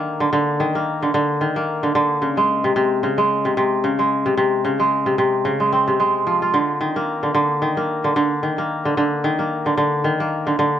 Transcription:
Already playing: D#3 A#3
0.20 D3
0.33 D3
0.60 D#3
0.75 A#3
1.03 D3
1.14 D3
1.41 D#3
1.56 A#3
1.83 D3
1.95 D3
2.22 C#3
2.37 G#3
2.64 C3
2.76 C3
3.03 C#3
3.18 G#3
3.45 C3
3.57 C3
3.84 C#3
3.99 G#3
4.26 C3
4.37 C3
4.65 C#3
4.80 G#3
5.06 C3
5.18 C3
5.45 C#3
5.60 G#3
5.72 C4
5.88 C3
6.00 G#3
6.27 F3
6.42 F4
6.54 D3
6.81 D#3
6.96 A#3
7.23 D3
7.34 D3
7.62 D#3
7.77 A#3
8.04 D3
8.16 D3
8.43 D#3
8.58 A#3
8.85 D3
8.97 D3
9.24 D#3
9.39 A#3
9.66 D3
9.77 D3
10.04 D#3
10.20 A#3
10.47 D3
10.59 D3

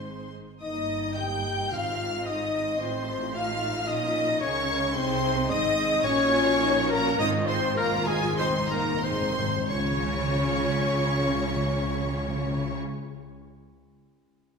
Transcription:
Already playing: G#1 G#2 G#3 C4 D#4 C5 C6
0.62 G1 G2 A#3 D#4 D#5 D#6
1.16 A#3 G4 G5 G6
1.71 G#1 G#2 C4 F4 F5 F6
2.26 D#4 D#5 D#6
2.79 A1 A2 C4 F4 C5 C6
3.34 D#4 F4 F5 F6
3.86 A#1 A#2 C#4 D#4 F4 D#5 D#6
4.40 C#2 C#3 C#4 A#4 C#5 C#6
4.95 C2 C3 C4 D#4 G#4 C5 C6
5.23 D#4
5.49 G#1 G#2 C4 D#4 D#5 D#6
5.78 C4
6.04 A#1 A#2 C#4 F#4 C#5 C#6
6.34 F4
6.63 D#4 F#4
6.90 A#3 C#4 A#4 A#5
7.18 G#1 G#2 C4 D#4 F4 D#5 D#6
7.46 C4 C5 C6
7.51 G#2
7.59 G#2
7.67 G#2
7.74 G#2 F4 A#4 A#5
7.79 G#2 A#3
7.90 G#2
7.97 G#2
8.06 G#2 G#3 G#4 G#5
8.16 G#2
8.24 G#2
8.33 G#2
8.37 C4 D#4 C5 C6
8.42 G#2
8.49 G#2
8.59 G#2
8.67 G#2 A#4 A#5
8.72 G#2 A#3 A#4
8.84 G#2
8.94 G#2
9.02 G#2 C4 D#4 G#4 C5 C6
9.12 G#2
9.21 G#2
9.30 G#2
9.39 G#2
9.48 G#2
9.57 G#2
9.68 C#2 C#3 C#4 F4 C#5 C#6
9.77 C#3
9.84 C#3
9.92 C#3
9.99 C#3
10.06 C#3
10.13 C#3
10.21 C#3
10.28 C#3
10.35 C#3
10.43 C#3
10.49 C#3
10.56 C#3
10.63 C#3
10.70 C#3
10.78 C#3
10.84 C#3
10.91 C#3
10.99 C#3
11.06 C#3
11.13 C#3
11.21 C#3
11.28 C#3
11.35 C#3
11.42 C#3
11.49 C#3
11.56 C#3
11.64 C#3
11.71 C#3
11.77 C#3
11.85 C#3
11.93 C#3
12.00 C#3
12.06 C#3
12.14 C#3
12.21 C#3
12.28 C#3
12.35 C#3
12.43 C#3
12.50 C#3
12.57 C#3
12.64 C#3
12.72 C#3

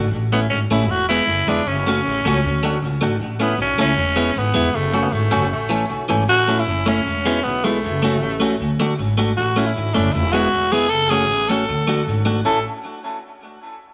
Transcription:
0.11 A1
0.32 A3 B3 C#4 E4
0.50 G#1 C#4
0.71 A1 A3 C#4 E4
0.89 E1 F#4
1.09 G#3 B3 E4
1.27 F#1
1.47 E1 G#3 B3 D4 E4
1.66 F#1 C#4
1.87 A3 C#4 F#4
2.06 A1
2.25 C#2 A3 C#4 F#4
2.44 D2
2.63 A3 D4 F#4
2.82 C#2
3.01 G#1 A3 D4 F#4
3.20 A1
3.40 A3 B3 C#4 E4
3.58 B1
3.62 C#4
3.78 C#2 A3 C#4 E4
3.97 E1
4.16 G#3 B3 E4
4.36 G#1 B3
4.54 E1 G#3 B3 E4
4.74 F#1 A3
4.93 A3 C#4 F#4
5.03 B3
5.12 G#1 A3
5.31 F#1 A3 C#4 F#4
5.52 A1 A3
5.69 E3 A3 C#4
5.90 B1
6.09 G#1 E3 A3 C#4
6.28 A1 F#4
6.48 A3 C#4 E4
6.59 E4
6.67 F#1
6.86 A3 C#4 E4
7.06 E1
7.26 G#3 B3 E4
7.43 B1 B3
7.64 G#3 A3 B3 E4
7.83 F#1
8.03 A3 C#4 F#4
8.21 A1
8.40 A3 C#4 F#4
8.60 D2
8.80 A3 D4 F#4
8.99 G#1
9.18 A3 D4 F#4
9.37 A1 F#4
9.56 A3 C#4 E4
9.66 E4
9.76 G#1
9.94 F#1 A3 C#4 D4 E4
10.13 E1 E4
10.32 G#3 B3 E4 F#4
10.53 E1
10.72 G#3 B3 E4 G#4
10.89 F#1 A4
11.09 A3 C#4 F#4 G#4
11.29 A1
11.48 A3 C#4 F#4 A4
11.68 D2
11.87 A3 D4 F#4
12.07 G#1
12.25 A3 D4 F#4
12.45 A1 C#4 E4 A4

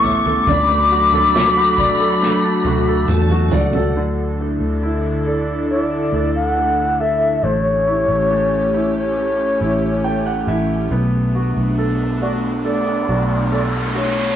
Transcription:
Already playing: A1 A3 B3 C#4 E4 A4 B4 C#5 C#6
0.03 E5 D6, floor tom, tambourine
0.26 A4, floor tom
0.47 D2 F#3 D4 F#4 A4 B5, kick, floor tom
0.69 A3
0.91 F#4, tambourine
1.12 A4, floor tom
1.35 A3, snare, tambourine
1.57 F#4
1.78 D5, kick, floor tom, tambourine
2.00 A4
2.22 A3, snare, tambourine
2.44 A5
2.65 D2 F#4, high tom, tambourine
2.88 A4
3.08 E2 A3 A5, mid tom, tambourine
3.30 F#4, mid tom
3.51 C#2 D5 F#5, floor tom, tambourine
3.73 A4, floor tom
3.95 D2 D3 D4 E4 A4
4.40 A3
4.60 D2
4.83 E4
5.27 A4 D5
5.70 E4 C#5
5.81 D5
6.12 D2 A4
6.35 F#5
6.58 A3
7.00 A4 E5
7.43 A1 A3 C#4 G4 C#5
7.87 E4
8.08 A1
8.31 A3
8.74 E4
8.98 C#5
9.17 A3
9.61 A1 E4
10.04 A3 G5
10.26 F#5
10.47 A1 E4 E5
10.91 B1 B3 D4, riser
11.35 F#4
11.56 B1
11.78 A4
12.22 F#4 D5
12.65 A4 D5
13.09 B1 F#4
13.52 A4 D5
13.95 F#4 C#5

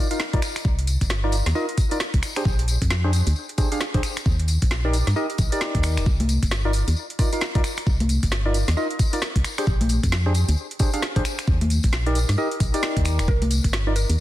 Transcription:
0.11 D#4 F4 A#4 F5, closed hi-hat, tambourine
0.20 snare
0.33 C2 D#4 F4 A#4 D5, kick, closed hi-hat
0.42 finger snap, open hi-hat, tambourine
0.56 finger snap, closed hi-hat, tambourine
0.65 C2, kick
0.79 closed hi-hat
0.87 open hi-hat, tambourine
1.01 G1, kick, closed hi-hat, tambourine
1.10 snare
1.24 D#4 F4 A#4 D5
1.32 open hi-hat, tambourine
1.46 D#2, snare, closed hi-hat, tambourine
1.55 D#4 F4 A#4 D#5, tambourine
1.69 closed hi-hat
1.78 kick, open hi-hat, tambourine
1.91 D#4 F4 A#4 D5, closed hi-hat, tambourine
2.00 snare, tambourine
2.14 C2, kick, closed hi-hat
2.23 finger snap, open hi-hat, tambourine
2.36 D4 G4 G#4 C5, finger snap, closed hi-hat
2.45 A#1, kick, tambourine
2.59 closed hi-hat
2.68 open hi-hat, tambourine
2.82 F2, kick, closed hi-hat, tambourine
2.90 snare
3.04 D4 G4 G#4 C5
3.13 open hi-hat, tambourine
3.27 D2, closed hi-hat, tambourine
3.36 tambourine
3.49 closed hi-hat
3.58 D4 G4 G#4 C5, kick, open hi-hat, tambourine
3.72 D4 G4 G#4 F5, closed hi-hat, tambourine
3.81 snare, tambourine
3.94 A#1 D4 G4 G#4 C5, kick, closed hi-hat
4.03 finger snap, open hi-hat, tambourine
4.17 finger snap, closed hi-hat, tambourine
4.26 D#2, kick, tambourine
4.39 closed hi-hat
4.48 open hi-hat, tambourine
4.62 A#1, kick, closed hi-hat, tambourine
4.71 snare, tambourine
4.85 D#4 G4 A#4 D5
4.93 open hi-hat, tambourine
5.07 G2, snare, closed hi-hat, tambourine
5.16 D#4 G4 A#4 D#5, tambourine
5.30 closed hi-hat
5.38 A#1, kick, open hi-hat, tambourine
5.52 D#4 G4 A#4 D5, closed hi-hat, tambourine
5.61 snare
5.75 D#2, kick, closed hi-hat
5.83 finger snap, open hi-hat, tambourine
5.97 D#1, finger snap, closed hi-hat, tambourine
6.06 C2, kick, tambourine
6.20 closed hi-hat, high conga
6.29 open hi-hat, tambourine
6.43 G1, kick, closed hi-hat, tambourine
6.51 snare, tambourine
6.65 D#4 F4 A#4 D5
6.73 open hi-hat, tambourine
6.88 D#2, closed hi-hat, tambourine
6.96 tambourine
7.10 closed hi-hat
7.19 D#4 F4 A#4 D5, kick, open hi-hat, tambourine
7.32 D#4 F4 A#4 F5, closed hi-hat, tambourine
7.41 snare, tambourine
7.55 C2 D#4 F4 A#4 D5, kick, closed hi-hat
7.64 finger snap, open hi-hat, tambourine
7.77 finger snap, closed hi-hat, tambourine
7.87 C2, kick, tambourine
8.00 closed hi-hat, high conga
8.09 open hi-hat, tambourine
8.23 G1, kick, closed hi-hat, tambourine
8.32 snare, tambourine
8.45 D#4 F4 A#4 D5
8.54 open hi-hat, tambourine
8.68 D#2, snare, closed hi-hat, tambourine
8.77 D#4 F4 A#4 D#5, tambourine
8.91 closed hi-hat
8.99 kick, open hi-hat, tambourine
9.13 D#4 F4 A#4 D5, closed hi-hat, tambourine
9.22 snare, tambourine
9.36 C2, kick, closed hi-hat
9.45 finger snap, open hi-hat, tambourine
9.58 D4 G4 G#4 C5, finger snap, closed hi-hat, tambourine
9.67 A#1, kick, tambourine
9.81 closed hi-hat, high conga
9.89 open hi-hat, tambourine
10.03 F2, kick, closed hi-hat, tambourine
10.12 snare
10.26 D4 G4 G#4 C5
10.34 open hi-hat, tambourine
10.48 D2, closed hi-hat, tambourine
10.57 tambourine
10.71 closed hi-hat
10.79 D4 G4 G#4 C5, kick, open hi-hat, tambourine
10.93 D4 G4 G#4 F5, closed hi-hat, tambourine
11.02 snare, tambourine
11.16 A#1 D4 G4 G#4 C5, kick, closed hi-hat
11.25 finger snap, open hi-hat, tambourine
11.39 finger snap, closed hi-hat, tambourine
11.47 D#2, kick, tambourine
11.61 closed hi-hat, high conga
11.70 open hi-hat, tambourine
11.83 A#1, kick, closed hi-hat, tambourine
11.93 snare, tambourine
12.06 D#4 G4 A#4 D5, closed hi-hat
12.15 open hi-hat, tambourine
12.29 G2, snare, closed hi-hat, tambourine
12.38 D#4 G4 A#4 D#5, tambourine
12.51 closed hi-hat
12.60 A#1, kick, open hi-hat, tambourine
12.74 D#4 G4 A#4 D5, closed hi-hat, tambourine
12.83 snare, tambourine
12.97 D#2, kick, closed hi-hat
13.05 finger snap, open hi-hat, tambourine
13.19 D#1, finger snap, closed hi-hat, tambourine
13.28 C2 A#4, kick, tambourine
13.42 closed hi-hat, high conga
13.51 open hi-hat, tambourine
13.64 G1, kick, closed hi-hat, tambourine
13.73 snare
13.87 D#4 F4 A#4 D5
13.96 A#4, open hi-hat, tambourine
14.09 D#2, closed hi-hat, tambourine

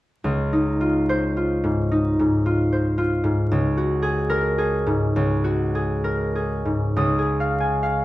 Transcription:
0.24 C#2
0.53 D#4
0.81 F4
1.09 C5
1.37 F4
1.64 G#2
1.91 D#4
2.19 G#2
2.46 F4
2.73 C5
2.98 F4
3.24 G#2
3.51 C#2
3.77 F#4
4.02 G#4
4.30 A#4
4.58 G#4
4.87 G#2
5.16 C#2
5.44 F#4
5.75 G#4
6.04 A#4
6.35 G#4
6.65 G#2
6.96 C#2 D#6
7.19 G#4
7.40 F5
7.60 G#5
7.83 F5

